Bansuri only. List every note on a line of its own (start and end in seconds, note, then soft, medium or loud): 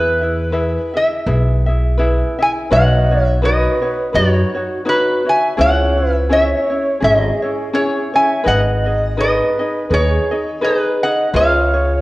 2.39 2.46 E5 medium
2.70 3.21 D#5 medium
3.21 3.38 C#5 medium
3.42 4.10 B4 medium
4.14 4.82 F#4 medium
4.85 5.23 F#4 medium
5.26 5.56 E5 medium
5.57 6.08 C#5 medium
6.08 6.25 B4 medium
6.29 6.98 C#5 medium
7.02 7.70 G#4 medium
7.74 8.12 G#4 medium
8.14 8.43 E5 medium
8.46 9.14 D#5 medium
9.20 9.86 B4 medium
9.90 10.35 G#4 medium
9.90 9.94 A4 medium
10.61 10.99 G#4 medium
11.01 11.30 D#5 medium
11.33 12.01 C#5 medium